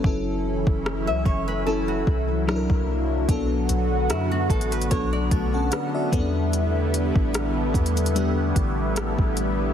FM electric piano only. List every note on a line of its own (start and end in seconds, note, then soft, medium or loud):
0.04 1.45 F#3 medium
0.04 1.46 C#4 medium
0.04 1.46 E4 medium
0.04 1.46 A4 medium
1.67 2.46 F#3 medium
1.67 2.48 C#4 medium
1.67 2.48 E4 medium
1.67 2.48 A4 medium
2.47 3.18 F#3 medium
2.47 3.19 D4 medium
2.47 3.19 E4 medium
2.47 2.56 A4 medium
2.56 3.23 A#4 medium
3.29 4.70 F#3 medium
3.29 4.70 B3 medium
3.29 4.70 D4 medium
3.29 4.71 A4 medium
4.91 6.12 F#3 medium
4.91 5.32 B3 medium
4.91 5.32 D4 medium
4.91 5.32 A4 medium
5.32 5.53 A3 medium
5.32 5.53 F#4 medium
5.32 5.52 A5 medium
5.54 5.72 C#4 medium
5.54 5.71 A4 medium
5.54 5.71 F#5 medium
5.72 5.93 D4 medium
5.72 5.93 B4 medium
5.72 5.92 F#5 medium
5.94 6.33 F#4 medium
5.94 6.33 D5 medium
5.94 6.49 E5 medium
6.12 7.53 G3 medium
6.12 7.54 B3 medium
6.12 6.20 C#4 medium
6.12 7.54 A4 medium
6.20 7.57 D4 medium
8.15 9.56 G3 medium
8.15 9.56 B3 medium
8.15 9.57 D4 medium
8.15 9.57 G4 medium